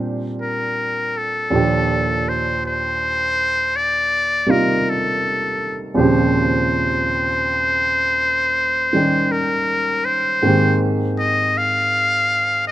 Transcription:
0, 0, Header, 1, 3, 480
1, 0, Start_track
1, 0, Tempo, 1115242
1, 653, Time_signature, 4, 2, 24, 8
1, 5473, End_track
2, 0, Start_track
2, 0, Title_t, "Muted trumpet"
2, 0, Program_c, 0, 59
2, 181, Note_on_c, 0, 70, 59
2, 505, Note_on_c, 0, 69, 68
2, 512, Note_off_c, 0, 70, 0
2, 986, Note_on_c, 0, 72, 68
2, 992, Note_off_c, 0, 69, 0
2, 1140, Note_off_c, 0, 72, 0
2, 1144, Note_on_c, 0, 72, 80
2, 1619, Note_on_c, 0, 74, 81
2, 1626, Note_off_c, 0, 72, 0
2, 1939, Note_on_c, 0, 70, 66
2, 1946, Note_off_c, 0, 74, 0
2, 2106, Note_on_c, 0, 69, 63
2, 2113, Note_off_c, 0, 70, 0
2, 2497, Note_off_c, 0, 69, 0
2, 2574, Note_on_c, 0, 72, 76
2, 4010, Note_on_c, 0, 70, 75
2, 4017, Note_off_c, 0, 72, 0
2, 4326, Note_on_c, 0, 72, 80
2, 4332, Note_off_c, 0, 70, 0
2, 4653, Note_off_c, 0, 72, 0
2, 4815, Note_on_c, 0, 75, 78
2, 4983, Note_on_c, 0, 77, 90
2, 4990, Note_off_c, 0, 75, 0
2, 5454, Note_off_c, 0, 77, 0
2, 5457, Note_on_c, 0, 75, 84
2, 5473, Note_off_c, 0, 75, 0
2, 5473, End_track
3, 0, Start_track
3, 0, Title_t, "Grand piano"
3, 0, Program_c, 1, 0
3, 0, Control_c, 1, 64, 127
3, 0, Note_on_c, 1, 46, 47
3, 0, Note_on_c, 1, 55, 48
3, 0, Note_on_c, 1, 60, 47
3, 0, Note_on_c, 1, 62, 46
3, 0, Note_on_c, 1, 67, 52
3, 643, Note_off_c, 1, 46, 0
3, 647, Note_on_c, 1, 39, 44
3, 649, Note_off_c, 1, 55, 0
3, 649, Note_on_c, 1, 46, 40
3, 654, Note_off_c, 1, 60, 0
3, 655, Note_off_c, 1, 62, 0
3, 655, Note_on_c, 1, 53, 37
3, 659, Control_c, 1, 64, 0
3, 661, Note_on_c, 1, 62, 44
3, 663, Note_off_c, 1, 67, 0
3, 669, Note_on_c, 1, 67, 49
3, 721, Control_c, 1, 64, 127
3, 1921, Note_on_c, 1, 48, 35
3, 1922, Note_on_c, 1, 55, 32
3, 1928, Note_on_c, 1, 58, 32
3, 1933, Note_on_c, 1, 63, 34
3, 1933, Note_on_c, 1, 65, 43
3, 2552, Note_off_c, 1, 39, 0
3, 2556, Note_off_c, 1, 46, 0
3, 2558, Note_off_c, 1, 53, 0
3, 2558, Note_on_c, 1, 39, 45
3, 2562, Note_on_c, 1, 46, 43
3, 2564, Note_on_c, 1, 53, 47
3, 2565, Note_off_c, 1, 48, 0
3, 2565, Note_off_c, 1, 55, 0
3, 2568, Note_off_c, 1, 58, 0
3, 2570, Note_off_c, 1, 63, 0
3, 2570, Note_off_c, 1, 65, 0
3, 2570, Note_on_c, 1, 60, 40
3, 2571, Note_off_c, 1, 62, 0
3, 2572, Control_c, 1, 64, 0
3, 2572, Note_on_c, 1, 49, 44
3, 2574, Note_off_c, 1, 67, 0
3, 2581, Note_on_c, 1, 67, 55
3, 2639, Control_c, 1, 64, 127
3, 3843, Note_on_c, 1, 51, 34
3, 3847, Note_on_c, 1, 55, 29
3, 3851, Note_on_c, 1, 61, 31
3, 3853, Note_off_c, 1, 67, 0
3, 3855, Note_on_c, 1, 63, 30
3, 3859, Note_on_c, 1, 67, 36
3, 4483, Note_off_c, 1, 51, 0
3, 4486, Note_off_c, 1, 39, 0
3, 4486, Note_on_c, 1, 44, 43
3, 4488, Note_off_c, 1, 46, 0
3, 4489, Note_off_c, 1, 53, 0
3, 4489, Note_on_c, 1, 51, 39
3, 4491, Note_off_c, 1, 55, 0
3, 4492, Note_off_c, 1, 60, 0
3, 4493, Note_off_c, 1, 49, 0
3, 4494, Note_off_c, 1, 61, 0
3, 4495, Control_c, 1, 64, 0
3, 4496, Note_off_c, 1, 63, 0
3, 4497, Note_on_c, 1, 58, 39
3, 4498, Note_off_c, 1, 67, 0
3, 4499, Note_on_c, 1, 60, 40
3, 4507, Note_on_c, 1, 67, 43
3, 4575, Control_c, 1, 64, 127
3, 5473, Note_off_c, 1, 44, 0
3, 5473, Note_off_c, 1, 51, 0
3, 5473, Note_off_c, 1, 58, 0
3, 5473, Note_off_c, 1, 60, 0
3, 5473, Note_off_c, 1, 67, 0
3, 5473, End_track
0, 0, End_of_file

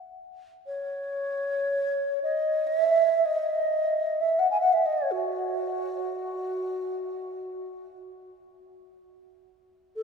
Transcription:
0, 0, Header, 1, 2, 480
1, 0, Start_track
1, 0, Tempo, 500000
1, 9629, End_track
2, 0, Start_track
2, 0, Title_t, "Alto flute"
2, 0, Program_c, 0, 73
2, 635, Note_on_c, 0, 73, 80
2, 2102, Note_off_c, 0, 73, 0
2, 2140, Note_on_c, 0, 75, 76
2, 2562, Note_on_c, 0, 76, 86
2, 2576, Note_off_c, 0, 75, 0
2, 3120, Note_on_c, 0, 75, 79
2, 3134, Note_off_c, 0, 76, 0
2, 4041, Note_on_c, 0, 76, 69
2, 4055, Note_off_c, 0, 75, 0
2, 4213, Note_on_c, 0, 78, 72
2, 4228, Note_off_c, 0, 76, 0
2, 4317, Note_off_c, 0, 78, 0
2, 4323, Note_on_c, 0, 80, 76
2, 4411, Note_off_c, 0, 80, 0
2, 4417, Note_on_c, 0, 78, 75
2, 4536, Note_on_c, 0, 76, 74
2, 4550, Note_off_c, 0, 78, 0
2, 4660, Note_on_c, 0, 75, 81
2, 4674, Note_off_c, 0, 76, 0
2, 4778, Note_on_c, 0, 73, 76
2, 4792, Note_off_c, 0, 75, 0
2, 4905, Note_on_c, 0, 66, 73
2, 4920, Note_off_c, 0, 73, 0
2, 7664, Note_off_c, 0, 66, 0
2, 9558, Note_on_c, 0, 69, 64
2, 9629, Note_off_c, 0, 69, 0
2, 9629, End_track
0, 0, End_of_file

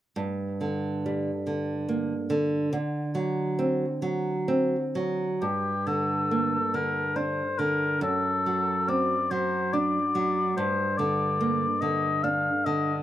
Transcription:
0, 0, Header, 1, 3, 480
1, 0, Start_track
1, 0, Key_signature, -2, "minor"
1, 0, Tempo, 891530
1, 85, Time_signature, 3, 2, 24, 8
1, 563, Tempo, 842697
1, 2003, Tempo, 909091
1, 3443, Tempo, 862069
1, 4883, Tempo, 836820
1, 7258, End_track
2, 0, Start_track
2, 0, Title_t, "Oboe"
2, 0, Program_c, 0, 68
2, 2973, Note_on_c, 0, 67, 40
2, 3216, Note_on_c, 0, 69, 44
2, 3224, Note_off_c, 0, 67, 0
2, 3690, Note_on_c, 0, 70, 41
2, 3698, Note_off_c, 0, 69, 0
2, 3922, Note_on_c, 0, 72, 41
2, 3931, Note_off_c, 0, 70, 0
2, 4157, Note_on_c, 0, 70, 42
2, 4165, Note_off_c, 0, 72, 0
2, 4398, Note_off_c, 0, 70, 0
2, 4402, Note_on_c, 0, 69, 44
2, 4884, Note_on_c, 0, 74, 42
2, 4892, Note_off_c, 0, 69, 0
2, 5126, Note_on_c, 0, 72, 47
2, 5134, Note_off_c, 0, 74, 0
2, 5367, Note_on_c, 0, 74, 44
2, 5375, Note_off_c, 0, 72, 0
2, 5843, Note_off_c, 0, 74, 0
2, 5847, Note_on_c, 0, 72, 47
2, 6080, Note_on_c, 0, 74, 41
2, 6089, Note_off_c, 0, 72, 0
2, 6558, Note_on_c, 0, 75, 50
2, 6567, Note_off_c, 0, 74, 0
2, 6801, Note_on_c, 0, 77, 47
2, 6810, Note_off_c, 0, 75, 0
2, 7042, Note_on_c, 0, 75, 44
2, 7050, Note_off_c, 0, 77, 0
2, 7212, Note_off_c, 0, 75, 0
2, 7258, End_track
3, 0, Start_track
3, 0, Title_t, "Nylon-string guitar"
3, 0, Program_c, 1, 24
3, 86, Note_on_c, 1, 43, 32
3, 327, Note_on_c, 1, 50, 25
3, 570, Note_on_c, 1, 55, 27
3, 708, Note_off_c, 1, 50, 0
3, 803, Note_on_c, 1, 50, 27
3, 948, Note_off_c, 1, 55, 0
3, 1041, Note_on_c, 1, 58, 28
3, 1181, Note_off_c, 1, 50, 0
3, 1277, Note_on_c, 1, 50, 29
3, 1420, Note_off_c, 1, 58, 0
3, 1493, Note_off_c, 1, 43, 0
3, 1514, Note_off_c, 1, 50, 0
3, 1520, Note_on_c, 1, 50, 37
3, 1760, Note_on_c, 1, 54, 30
3, 2010, Note_on_c, 1, 60, 31
3, 2146, Note_off_c, 1, 54, 0
3, 2239, Note_on_c, 1, 54, 35
3, 2386, Note_off_c, 1, 60, 0
3, 2482, Note_on_c, 1, 60, 35
3, 2626, Note_off_c, 1, 54, 0
3, 2731, Note_on_c, 1, 54, 33
3, 2879, Note_off_c, 1, 60, 0
3, 2955, Note_off_c, 1, 50, 0
3, 2976, Note_off_c, 1, 54, 0
3, 2976, Note_on_c, 1, 43, 33
3, 3214, Note_on_c, 1, 50, 25
3, 3450, Note_on_c, 1, 58, 25
3, 3591, Note_off_c, 1, 50, 0
3, 3688, Note_on_c, 1, 50, 28
3, 3828, Note_off_c, 1, 58, 0
3, 3920, Note_on_c, 1, 62, 27
3, 4062, Note_off_c, 1, 50, 0
3, 4160, Note_on_c, 1, 50, 26
3, 4301, Note_off_c, 1, 62, 0
3, 4377, Note_off_c, 1, 43, 0
3, 4395, Note_on_c, 1, 42, 36
3, 4400, Note_off_c, 1, 50, 0
3, 4647, Note_on_c, 1, 54, 25
3, 4881, Note_on_c, 1, 60, 26
3, 5033, Note_off_c, 1, 54, 0
3, 5125, Note_on_c, 1, 54, 29
3, 5272, Note_off_c, 1, 60, 0
3, 5369, Note_on_c, 1, 62, 28
3, 5511, Note_off_c, 1, 54, 0
3, 5607, Note_on_c, 1, 54, 27
3, 5751, Note_off_c, 1, 62, 0
3, 5823, Note_off_c, 1, 42, 0
3, 5846, Note_off_c, 1, 54, 0
3, 5851, Note_on_c, 1, 43, 35
3, 6088, Note_on_c, 1, 50, 27
3, 6327, Note_on_c, 1, 58, 29
3, 6465, Note_off_c, 1, 50, 0
3, 6564, Note_on_c, 1, 50, 28
3, 6707, Note_off_c, 1, 58, 0
3, 6805, Note_on_c, 1, 62, 29
3, 6947, Note_off_c, 1, 50, 0
3, 7048, Note_on_c, 1, 50, 32
3, 7189, Note_off_c, 1, 62, 0
3, 7258, Note_off_c, 1, 43, 0
3, 7258, Note_off_c, 1, 50, 0
3, 7258, End_track
0, 0, End_of_file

